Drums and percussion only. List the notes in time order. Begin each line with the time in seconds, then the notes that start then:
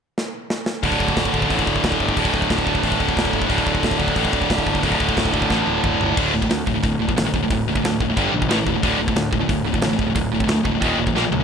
0.18 snare
0.50 snare
0.66 snare
0.83 kick, open hi-hat
0.92 kick
1.00 kick
1.08 kick
1.16 kick, snare, open hi-hat
1.25 kick
1.34 kick
1.42 kick
1.50 kick, open hi-hat
1.59 kick
1.67 kick
1.76 kick
1.84 kick, snare, open hi-hat
1.92 kick
2.00 kick
2.09 kick
2.17 kick, open hi-hat
2.25 kick
2.34 kick
2.42 kick
2.50 kick, snare, open hi-hat
2.59 kick
2.67 kick
2.75 kick
2.83 kick, open hi-hat
2.92 kick
3.00 kick
3.09 kick
3.17 kick, snare, open hi-hat
3.25 kick
3.33 kick
3.42 kick
3.50 kick, open hi-hat
3.58 kick
3.67 kick
3.75 kick
3.83 kick, snare, open hi-hat
3.91 kick
4.00 kick
4.08 kick
4.15 kick, open hi-hat
4.25 kick
4.33 kick
4.42 kick
4.50 kick, snare, open hi-hat
4.58 kick
4.67 kick
4.75 kick
4.83 kick, open hi-hat
4.92 kick
5.00 kick
5.09 kick
5.17 kick, snare, open hi-hat
5.25 kick
5.34 kick
5.42 kick
5.50 kick, snare
5.67 high tom
5.84 kick, mid tom
6.01 floor tom
6.17 kick, crash
6.42 kick
6.50 snare, open hi-hat
6.67 kick
6.83 kick, open hi-hat
7.09 kick
7.17 snare, open hi-hat
7.34 kick
7.51 kick, open hi-hat
7.75 kick
7.85 snare, open hi-hat
8.00 kick
8.17 kick, open hi-hat
8.42 kick
8.50 snare, open hi-hat
8.67 kick
8.83 kick, open hi-hat
9.08 kick
9.16 snare, open hi-hat
9.33 kick
9.49 kick, open hi-hat
9.74 kick
9.82 snare, open hi-hat
9.99 kick
10.16 kick, open hi-hat
10.40 kick
10.49 snare, open hi-hat
10.65 kick
10.82 kick, open hi-hat
11.07 kick
11.17 snare
11.32 floor tom